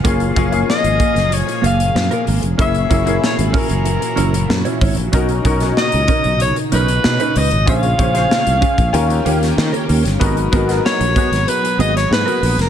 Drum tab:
HH |xxxx-xxxxxxx-xox|xxxx-xoxxxxx-xox|xxxx-xxxxxxx-xox|xxxx-xxxxxxx-xox|
SD |----o--o----o---|----o-------o---|---oo-------o---|---oo------oo--o|
BD |o-o---o---------|o-o---o-------o-|o-o---o---------|o-o---oo--------|

HH |xxxx-xxxxxxx-xox|
SD |---oo--o---oo--o|
BD |o-o---o---------|